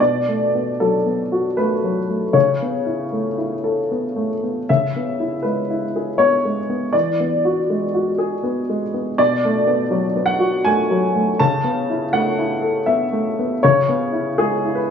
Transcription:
0.00 2.32 B2 soft
0.00 0.79 D5 medium
0.29 0.69 A3 soft
0.55 0.96 B3 soft
0.80 1.21 F#3 soft
0.80 1.57 A4 medium
1.06 1.47 B3 soft
1.32 1.73 F#4 soft
1.57 1.99 A3 soft
1.57 2.35 B4 medium
1.84 2.25 F#3 soft
2.10 2.35 A3 soft
2.33 4.63 C#3 soft
2.33 4.28 C#5 medium
2.62 3.03 B3 soft
2.86 3.28 E4 soft
3.12 3.54 A3 soft
3.38 3.79 E4 soft
3.64 4.05 A4 soft
3.91 4.32 B3 soft
4.16 4.58 A3 soft
4.43 4.69 B3 soft
4.69 6.91 C#3 soft
4.69 5.44 E5 medium
4.96 5.35 B3 soft
5.20 5.59 E4 soft
5.43 5.84 G#3 soft
5.43 6.18 B4 medium
5.70 6.10 E4 soft
5.96 6.35 G#4 soft
6.18 6.59 B3 soft
6.18 6.93 C#5 medium
6.45 6.84 G#3 soft
6.69 6.94 B3 soft
6.93 9.15 E3 soft
6.93 8.81 D5 medium
7.20 7.60 B3 soft
7.45 7.85 F#4 soft
7.70 8.10 G#3 soft
7.94 8.34 F#4 soft
8.18 8.59 G#4 soft
8.43 8.84 B3 soft
8.69 9.09 G#3 soft
8.94 9.18 B3 soft
9.18 11.35 B2 medium
9.18 10.28 D5 medium
9.45 9.83 A3 soft
9.67 10.06 B3 soft
9.90 10.30 F#3 soft
10.16 10.55 B3 soft
10.26 10.64 F#5 medium
10.39 10.79 F#4 soft
10.65 11.05 A3 soft
10.65 11.39 G#5 medium
10.91 11.30 F#3 soft
11.16 11.40 A3 soft
11.39 13.59 C#3 medium
11.39 12.14 A5 medium
11.64 12.04 B3 soft
11.90 12.29 E4 soft
12.13 12.53 A3 soft
12.13 12.88 F#5 medium
12.38 12.78 E4 soft
12.62 13.03 A4 soft
12.86 13.27 B3 soft
12.86 13.62 E5 medium
13.12 13.52 A3 soft
13.39 13.63 B3 soft
13.63 14.90 C#3 medium
13.63 14.38 C#5 medium
13.89 14.29 B3 soft
14.12 14.53 E4 soft
14.38 14.80 G#3 soft
14.38 14.77 G#4 medium
14.65 14.90 E4 soft
14.75 14.90 B4 medium

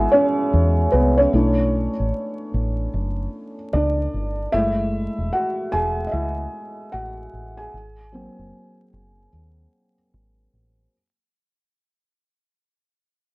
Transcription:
0.00 1.34 G#3 medium
0.00 0.94 B3 medium
0.00 1.34 E4 medium
0.00 1.34 F#4 medium
0.00 1.34 G#4 medium
0.00 1.34 E5 loud
0.00 1.34 F#5 medium
0.00 1.34 G#5 loud
0.11 0.89 C#4 medium
0.11 0.94 C#5 medium
0.54 0.86 E2 loud
0.92 1.26 C2 medium
0.92 1.17 B3 medium
0.92 1.18 B4 medium
1.18 1.32 C#4 medium
1.18 3.54 C#5 medium
1.33 1.87 B1 medium
1.33 1.90 A3 medium
1.33 1.90 C#4 medium
1.33 1.90 D4 medium
1.33 1.91 E4 medium
2.00 2.11 A1 medium
2.54 2.86 A1 medium
2.94 3.26 F#1 medium
3.73 4.06 C#2 medium
3.73 4.50 D4 medium
3.73 4.55 D5 medium
4.14 4.46 G1 medium
4.52 5.07 F#1 loud
4.52 5.69 G#3 medium
4.52 5.69 A3 medium
4.52 5.29 E4 medium
4.52 5.35 E5 loud
5.18 5.30 E1 medium
5.32 5.70 F#4 medium
5.32 5.73 F#5 medium
5.72 6.06 E1 medium
5.72 6.05 G#4 medium
5.72 6.08 G#5 loud
6.07 6.12 D#5 medium
6.11 6.46 C#2 loud
6.11 6.89 E4 medium
6.11 6.94 E5 medium
6.92 7.26 A1 medium
6.92 7.54 F#4 medium
6.92 7.59 F#5 medium
7.33 7.66 A1 medium
7.57 9.94 G#4 medium
7.57 9.93 G#5 medium
7.73 8.27 G#1 medium
8.12 9.28 F#3 soft
8.12 9.29 A#3 soft
8.12 9.29 C4 medium
8.39 8.50 F#1 medium
8.93 9.26 F#1 medium
9.33 9.65 D#2 medium
10.14 10.46 G#1 medium
10.53 10.86 A1 medium

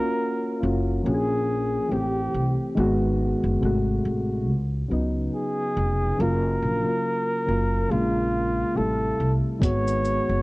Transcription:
0.00 0.62 A#3 medium
0.00 0.64 C#4 medium
0.00 0.61 F4 medium
0.00 0.03 F#4 loud
0.00 0.50 F#4 medium
0.00 0.80 A#4 loud
0.61 0.98 F#1 medium
0.61 1.03 A#3 medium
0.61 1.05 C#4 medium
0.61 1.04 F4 medium
0.65 1.06 F#4 medium
1.03 1.77 A#1 loud
1.03 1.74 F3 medium
1.03 1.75 A#3 medium
1.03 1.76 C#4 medium
1.03 1.93 G#4 medium
1.07 1.13 F#4 medium
1.14 1.80 G#4 medium
1.89 2.27 A1 medium
1.89 2.60 E3 medium
1.89 2.61 A3 medium
1.89 2.61 C4 medium
1.89 2.58 G4 medium
1.93 2.62 G4 medium
2.34 2.54 C2 medium
2.75 3.32 G#1 loud
2.75 3.61 D#3 loud
2.75 3.61 G#3 loud
2.75 3.63 B3 loud
2.80 3.64 F#4 loud
3.44 3.59 F#1 medium
3.60 3.98 G#1 medium
3.60 4.32 C3 medium
3.60 4.32 G#3 medium
3.60 4.33 A3 medium
3.65 4.34 F#4 loud
4.05 4.48 A1 medium
4.48 4.84 C#2 loud
4.89 5.26 C#2 medium
4.89 5.89 C#3 medium
4.89 5.90 F#3 medium
4.89 5.91 B3 medium
4.93 5.92 D#4 medium
5.34 6.22 G#4 medium
5.77 6.12 F1 loud
6.17 6.55 F#1 loud
6.17 6.68 C#3 medium
6.17 6.69 F#3 medium
6.17 6.69 A#3 medium
6.17 7.93 A#4 loud
6.22 6.70 F4 loud
6.62 6.82 A#1 loud
6.84 7.33 C#3 medium
6.84 7.34 F#3 medium
6.84 7.35 A#3 medium
6.89 7.36 F4 medium
7.46 7.84 F#1 medium
7.46 7.87 C#3 medium
7.46 7.90 F#3 medium
7.46 7.91 A#3 medium
7.50 7.92 F4 medium
7.89 8.62 A#1 loud
7.89 8.60 C#3 medium
7.89 8.61 G#3 medium
7.89 8.62 A#3 medium
7.89 8.78 F4 loud
7.93 8.62 F4 medium
8.74 9.12 A1 medium
8.74 9.46 C3 medium
8.74 9.46 G3 medium
8.74 9.47 A3 medium
8.74 9.37 A4 loud
8.79 9.48 E4 medium
9.20 9.39 C2 medium
9.59 10.18 G#1 loud
9.59 10.42 D#3 medium
9.59 10.42 G#3 medium
9.59 10.42 B3 medium
9.59 10.42 C#5 loud
9.59 kick medium
9.59 closed hi-hat medium
9.59 shaker medium
9.64 10.42 F#4 loud
9.88 shaker soft
10.05 shaker soft
10.29 10.42 F#1 medium

